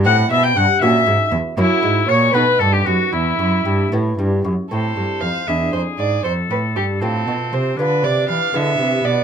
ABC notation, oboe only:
X:1
M:6/8
L:1/16
Q:3/8=78
K:Em
V:1 name="Oboe"
f2 e g f2 e4 z2 | E4 ^c2 B2 A G F2 | E6 z6 | [K:Am] c6 ^G6 |
A6 C6 | D6 B,6 |]